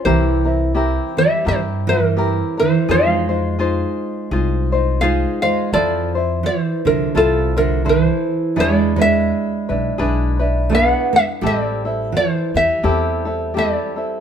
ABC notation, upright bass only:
X:1
M:4/4
L:1/8
Q:"Swing" 1/4=84
K:Fm
V:1 name="Upright bass" clef=bass
C,,4 G,,4 | F,,4 C,,4 | [K:F] F,,3 C,, C,,4 | E,,3 =B,,, B,,,4 |
A,,,3 E,, E,,4 |]